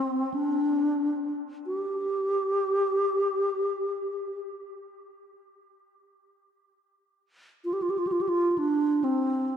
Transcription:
0.00 0.35 C4 medium
0.34 1.38 D4 medium
1.66 4.40 G4 medium
7.65 7.75 F4 medium
7.73 7.84 G4 medium
7.82 7.91 F4 medium
7.90 8.00 G4 medium
7.98 8.08 F4 medium
8.07 8.14 G4 medium
8.12 8.23 F4 medium
8.21 8.30 G4 medium
8.29 8.51 F4 medium
8.51 8.60 F4 medium
8.58 9.05 D4 medium
9.04 9.57 C4 medium

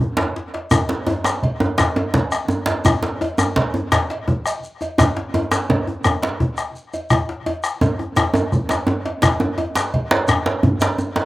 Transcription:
0.00 djembe bass soft
0.17 bombo rim medium
0.17 cowbell soft
0.17 djembe slap loud
0.17 djembe bass soft
0.36 djembe slap medium
0.54 cowbell soft
0.54 djembe slap medium
0.71 bombo rim loud
0.71 bombo low loud
0.71 cowbell medium
0.71 djembe tone loud
0.71 djembe bass medium
0.71 shekere medium
0.89 djembe slap medium
1.07 cowbell medium
1.07 djembe tone medium
1.24 bombo rim medium
1.24 djembe slap medium
1.24 shekere soft
1.43 bombo low loud
1.43 cowbell medium
1.60 djembe tone loud
1.60 djembe tone medium
1.78 bombo rim loud
1.78 cowbell medium
1.78 djembe slap medium
1.78 djembe slap soft
1.78 djembe bass medium
1.78 shekere medium
1.96 cowbell medium
1.96 djembe slap medium
1.96 djembe tone medium
2.14 bombo low loud
2.14 djembe slap medium
2.14 djembe slap soft
2.14 djembe tone medium
2.32 bombo rim medium
2.32 cowbell medium
2.32 shekere soft
2.48 djembe tone loud
2.48 shekere soft
2.66 cowbell medium
2.66 djembe slap medium
2.66 djembe tone medium
2.66 shekere soft
2.85 bombo rim loud
2.85 bombo low medium
2.85 cowbell medium
2.85 djembe tone medium
2.85 djembe bass medium
2.85 shekere medium
3.03 djembe slap medium
3.21 cowbell medium
3.21 djembe tone medium
3.38 bombo rim medium
3.38 djembe tone loud
3.38 shekere soft
3.56 bombo low loud
3.56 cowbell medium
3.56 djembe slap medium
3.74 djembe tone medium
3.92 bombo rim loud
3.92 cowbell medium
3.92 djembe slap soft
3.92 djembe slap medium
3.92 djembe bass medium
3.92 shekere medium
4.10 cowbell medium
4.10 djembe slap medium
4.28 bombo low loud
4.28 djembe slap soft
4.28 djembe tone medium
4.46 bombo rim medium
4.46 cowbell medium
4.46 shekere soft
4.64 shekere soft
4.81 cowbell medium
4.81 djembe tone medium
4.81 shekere soft
4.98 bombo rim loud
4.98 bombo low loud
4.98 cowbell medium
4.98 djembe tone loud
4.98 djembe bass medium
4.98 shekere medium
5.17 djembe slap medium
5.34 cowbell medium
5.34 djembe tone medium
5.52 bombo rim medium
5.52 djembe slap medium
5.52 shekere soft
5.69 bombo low loud
5.69 cowbell medium
5.69 djembe tone loud
5.87 djembe tone medium
6.04 bombo rim loud
6.04 cowbell medium
6.04 djembe slap soft
6.04 djembe tone medium
6.04 djembe bass medium
6.04 shekere medium
6.22 cowbell soft
6.22 djembe slap medium
6.40 bombo low medium
6.40 djembe slap soft
6.40 djembe tone medium
6.57 bombo rim medium
6.57 cowbell medium
6.57 shekere soft
6.76 shekere soft
6.93 cowbell soft
6.93 djembe tone soft
6.93 shekere soft
7.10 bombo rim loud
7.10 bombo low medium
7.10 cowbell medium
7.10 djembe bass medium
7.10 shekere medium
7.29 djembe slap medium
7.46 cowbell medium
7.46 djembe tone medium
7.64 bombo rim medium
7.64 shekere soft
7.81 bombo low medium
7.81 cowbell medium
7.81 djembe tone loud
7.81 shekere soft
7.99 bombo rim soft
7.99 djembe tone medium
8.16 bombo rim loud
8.16 cowbell medium
8.16 djembe slap medium
8.16 djembe bass medium
8.16 shekere medium
8.34 cowbell soft
8.34 djembe slap medium
8.34 djembe tone loud
8.34 shekere soft
8.52 bombo rim soft
8.52 bombo low loud
8.52 djembe bass soft
8.52 shekere soft
8.69 bombo rim medium
8.69 cowbell medium
8.69 djembe slap medium
8.69 djembe bass soft
8.69 shekere soft
8.87 djembe slap medium
8.87 djembe tone loud
9.05 cowbell medium
9.05 djembe slap medium
9.22 bombo rim loud
9.22 bombo low loud
9.22 cowbell medium
9.22 djembe slap medium
9.22 djembe bass medium
9.22 shekere medium
9.40 djembe slap medium
9.40 djembe tone loud
9.58 cowbell medium
9.58 djembe tone medium
9.75 bombo rim medium
9.75 djembe slap medium
9.75 shekere soft
9.94 bombo low loud
9.94 cowbell medium
10.11 djembe slap loud
10.11 djembe tone medium
10.28 bombo rim loud
10.28 cowbell medium
10.28 djembe slap soft
10.28 djembe tone medium
10.28 djembe bass medium
10.28 shekere medium
10.46 djembe slap medium
10.63 bombo low loud
10.63 djembe slap soft
10.63 djembe tone medium
10.63 djembe bass medium
10.81 bombo rim medium
10.81 cowbell medium
10.81 djembe slap loud
10.81 shekere soft
10.98 djembe tone medium
10.98 shekere soft
11.16 cowbell medium
11.16 djembe slap medium
11.16 djembe tone medium

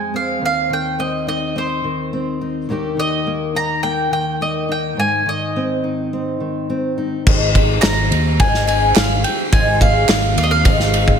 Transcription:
0.00 0.39 F2 medium
0.00 0.39 F3 soft
0.00 0.42 G#3 soft
0.00 0.13 C4 soft
0.00 0.16 G#5 medium
0.14 0.98 C4 soft
0.14 0.44 F5 medium
0.41 2.68 D#2 medium
0.46 0.73 F5 medium
0.70 1.83 D#3 soft
0.70 1.01 G5 medium
0.99 1.55 C4 soft
0.99 1.27 D#5 medium
1.27 2.41 D#4 soft
1.27 1.58 D#5 medium
1.56 2.12 C4 medium
1.56 2.39 C5 medium
1.84 2.69 D#3 soft
2.13 2.67 C4 soft
2.41 2.71 D#4 soft
2.69 4.96 D#2 medium
2.69 2.96 D#3 soft
2.69 3.25 A#3 medium
2.69 3.55 D#4 medium
2.69 4.96 G4 medium
2.97 4.10 D#3 soft
2.97 3.58 D#5 medium
3.27 3.83 A#3 soft
3.55 4.68 D#4 soft
3.55 3.83 A#5 medium
3.83 4.40 A#3 soft
3.83 4.12 G5 medium
4.11 5.25 D#3 soft
4.11 4.40 G5 medium
4.41 4.95 A#3 soft
4.41 4.71 D#5 medium
4.69 5.83 D#4 soft
4.69 4.99 G5 medium
4.97 7.22 G#2 medium
4.97 5.29 G#5 medium
5.26 6.39 D#3 medium
5.26 6.95 D#5 medium
5.56 6.12 C4 soft
5.84 6.96 D#4 soft
6.13 6.68 C4 soft
6.40 9.52 D#3 soft
6.70 7.23 C4 soft
6.98 7.23 D#4 soft
7.27 7.80 G#1 loud
7.27 7.83 G#2 medium
7.27 7.83 D#3 medium
7.27 7.82 F3 medium
7.27 7.83 G#3 loud
7.27 7.84 C4 medium
7.27 7.84 F4 loud
7.27 kick loud
7.27 crash loud
7.55 kick medium
7.55 ride medium
7.81 8.10 G#1 loud
7.81 8.40 F3 medium
7.81 8.40 G#3 medium
7.81 8.39 A#5 loud
7.81 snare loud
7.81 clap loud
7.81 ride medium
7.85 8.40 C4 medium
7.85 8.40 F4 medium
8.11 8.38 D#2 loud
8.11 ride medium
8.40 8.93 G#1 medium
8.40 8.96 G#2 medium
8.40 8.96 D#3 medium
8.40 8.94 F3 medium
8.40 8.96 G#3 medium
8.40 8.96 C4 loud
8.40 8.96 F4 loud
8.40 8.66 G#5 loud
8.40 kick loud
8.40 ride medium
8.54 snare soft
8.67 8.96 G#5 loud
8.67 ride medium
8.95 9.23 G#1 loud
8.95 9.52 F3 medium
8.95 9.53 G#3 medium
8.95 9.53 C4 medium
8.95 9.53 F4 medium
8.95 9.24 F5 medium
8.95 snare loud
8.95 clap medium
8.95 ride medium
9.24 9.52 G5 medium
9.24 ride medium
9.53 10.06 G#1 loud
9.53 10.09 G#2 medium
9.53 10.09 D#3 medium
9.53 10.08 F3 medium
9.53 10.09 G#3 medium
9.53 10.09 C4 medium
9.53 10.09 F4 medium
9.53 9.79 G#5 loud
9.53 kick loud
9.53 ride medium
9.81 10.37 F5 loud
9.81 kick medium
9.81 ride medium
10.09 10.35 G#1 loud
10.09 10.65 G#3 medium
10.09 10.65 C4 medium
10.09 10.65 F4 medium
10.09 snare loud
10.09 clap loud
10.09 ride medium
10.36 10.63 D#2 loud
10.36 10.45 F5 medium
10.36 ride medium
10.43 10.50 D#5 medium
10.51 10.64 F5 medium
10.65 11.18 G#1 loud
10.65 11.20 G#2 medium
10.65 11.20 D#3 medium
10.65 11.20 F3 loud
10.65 11.20 G#3 loud
10.65 11.20 C4 loud
10.65 11.20 F4 loud
10.65 11.20 F5 medium
10.65 kick loud
10.65 ride loud
10.80 snare soft
10.94 ride medium
11.08 kick medium

